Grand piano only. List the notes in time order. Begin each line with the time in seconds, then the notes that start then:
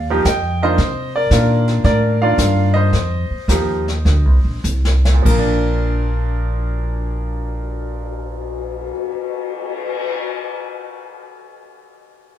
0.10 F3 A#3 D#4 G4
0.26 D#5 G5
0.62 D#3 A#3 D4 F4 C5 D#5
1.16 A#4 D5
1.32 D#3 A#3 D4 F4
1.85 A#4 D5
2.22 D#3 A#3 D4 F4 D5 F5
2.74 C5 D#5
3.49 F3 A#3 D#4 G4
5.14 A#2
5.22 F3 A#4
5.31 A#3
5.39 D4